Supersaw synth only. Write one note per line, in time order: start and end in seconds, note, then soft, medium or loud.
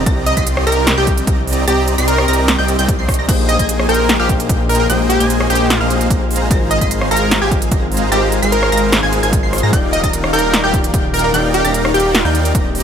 0.37 0.65 C4 loud
0.37 0.65 G4 medium
0.37 0.65 D5 medium
0.37 0.65 D#5 medium
0.37 0.65 C6 loud
0.67 0.95 C4 medium
0.67 0.95 G4 medium
0.67 0.95 D5 medium
0.67 0.95 D#5 medium
0.67 0.95 A#5 loud
0.98 1.25 C4 medium
0.98 1.25 G4 medium
0.98 1.25 D5 medium
0.98 1.25 D#5 medium
0.98 1.25 G5 medium
1.27 1.65 C4 medium
1.27 1.65 G4 medium
1.27 1.65 D5 medium
1.27 1.65 D#5 medium
1.27 1.65 A#5 medium
1.68 1.96 C4 loud
1.68 1.96 G4 medium
1.68 1.96 D5 medium
1.68 1.96 D#5 medium
1.68 1.96 A#5 loud
1.98 2.26 C4 medium
1.98 2.26 G4 medium
1.98 2.26 D5 medium
1.98 2.26 D#5 medium
1.98 2.26 C6 loud
2.28 2.56 C4 medium
2.28 2.56 G4 medium
2.28 2.56 D5 medium
2.28 2.56 D#5 medium
2.28 2.56 A#5 loud
2.59 2.77 C4 medium
2.59 2.77 G4 medium
2.59 2.77 D5 medium
2.59 2.77 D#5 medium
2.59 2.77 G5 medium
2.79 2.96 C4 medium
2.79 2.96 G4 medium
2.79 2.96 D5 medium
2.79 2.96 D#5 medium
2.79 2.96 G5 loud
2.99 3.16 C4 medium
2.99 3.16 G4 medium
2.99 3.16 D5 medium
2.99 3.16 D#5 medium
2.99 3.16 C6 medium
3.19 3.26 C4 medium
3.19 3.26 G4 medium
3.19 3.26 D5 medium
3.19 3.26 D#5 medium
3.19 3.26 A#5 medium
3.29 3.57 A#3 loud
3.29 3.57 G#4 medium
3.29 3.57 C5 medium
3.29 3.57 G5 loud
3.59 3.87 A#3 medium
3.59 3.87 G#4 medium
3.59 3.87 C5 medium
3.59 3.87 D#5 medium
3.89 4.17 A#3 medium
3.89 4.17 G#4 medium
3.89 4.17 C5 medium
3.89 4.17 D#5 medium
3.89 4.17 G5 loud
4.20 4.47 A#3 medium
4.20 4.47 G#4 medium
4.20 4.47 C5 medium
4.20 4.47 D#5 medium
4.20 4.47 F5 medium
4.49 4.87 A#3 medium
4.49 4.87 G#4 medium
4.49 4.87 C5 medium
4.49 4.87 D#5 medium
4.49 4.87 G5 medium
4.90 5.18 A#3 medium
4.90 5.18 G#4 medium
4.90 5.18 C5 medium
4.90 5.18 D#5 medium
4.90 5.18 G5 loud
5.20 5.48 A#3 loud
5.20 5.48 G#4 medium
5.20 5.48 C5 medium
5.20 5.48 D#5 medium
5.20 5.48 G#5 loud
5.50 5.78 A#3 medium
5.50 5.78 G#4 medium
5.50 5.78 C5 medium
5.50 5.78 D#5 medium
5.50 5.78 G5 loud
5.81 6.08 A#3 medium
5.81 6.08 G#4 medium
5.81 6.08 C5 medium
5.81 6.08 D#5 medium
5.81 6.08 F5 medium
6.11 6.48 G#3 medium
6.11 6.48 G#4 medium
6.11 6.48 C5 medium
6.11 6.48 F5 medium
6.11 6.48 A#5 medium
6.51 6.79 G#3 medium
6.51 6.79 G#4 medium
6.81 7.09 G#3 loud
6.81 7.09 G#4 medium
6.81 7.09 C5 medium
6.81 7.09 C6 loud
7.11 7.39 G#3 medium
7.11 7.39 G#4 medium
7.11 7.39 C5 medium
7.11 7.39 F5 medium
7.11 7.39 A#5 loud
7.42 7.69 G#3 medium
7.42 7.69 G#4 medium
7.42 7.69 C5 medium
7.42 7.69 F5 medium
7.42 7.69 G#5 medium
7.72 8.10 G#3 medium
7.72 8.10 G#4 medium
7.72 8.10 C5 medium
7.72 8.10 A#5 medium
8.12 8.40 G#3 medium
8.12 8.40 G#4 medium
8.12 8.40 C5 medium
8.12 8.40 F5 medium
8.12 8.40 A#5 loud
8.42 8.70 G#3 loud
8.42 8.70 G#4 medium
8.42 8.70 C5 medium
8.42 8.70 F5 medium
8.42 8.70 C6 loud
8.72 9.00 G#3 medium
8.72 9.00 G#4 medium
8.72 9.00 C5 medium
8.72 9.00 F5 medium
8.72 9.00 A#5 loud
9.03 9.21 G#3 medium
9.03 9.21 G#4 medium
9.03 9.21 C5 medium
9.03 9.21 F5 medium
9.03 9.21 G#5 medium
9.23 9.41 G#3 medium
9.23 9.41 G#4 medium
9.23 9.41 C5 medium
9.23 9.41 F5 medium
9.23 9.41 G#5 loud
9.43 9.61 G#3 medium
9.43 9.61 G#4 medium
9.43 9.61 C5 medium
9.43 9.61 F5 medium
9.43 9.61 C6 medium
9.63 9.71 G#3 medium
9.63 9.71 G#4 medium
9.63 9.71 C5 medium
9.63 9.71 F5 medium
9.63 9.71 A#5 medium
9.73 10.01 D#4 loud
9.73 10.01 A#4 medium
9.73 10.01 G5 loud
10.03 10.31 D#4 loud
10.03 10.31 A#4 medium
10.03 10.31 D5 medium
10.03 10.31 A#5 loud
10.33 10.61 D#4 medium
10.33 10.61 A#4 medium
10.33 10.61 D5 medium
10.33 10.61 F5 medium
10.33 10.61 G5 loud
10.64 10.91 D#4 medium
10.64 10.91 A#4 medium
10.64 10.91 D5 medium
10.64 10.91 F5 medium
10.64 10.91 G5 medium
10.94 11.32 D#4 medium
10.94 11.32 A#4 medium
10.94 11.32 D5 medium
10.94 11.32 F5 medium
10.94 11.32 G5 medium
11.34 11.62 D#4 loud
11.34 11.62 A#4 medium
11.34 11.62 D5 medium
11.34 11.62 F5 medium
11.34 11.62 G5 loud
11.65 11.92 D#4 loud
11.65 11.92 A#4 medium
11.65 11.92 D5 medium
11.65 11.92 F5 medium
11.65 11.92 A#5 loud
11.94 12.23 D#4 medium
11.94 12.23 A#4 medium
11.94 12.23 D5 medium
11.94 12.23 F5 medium
11.94 12.23 G5 loud
12.25 12.53 D#4 medium
12.25 12.53 A#4 medium
12.25 12.52 D5 medium
12.25 12.53 F5 medium
12.25 12.52 G5 medium
12.55 12.83 C4 medium
12.55 12.83 G4 medium
12.55 12.83 D5 medium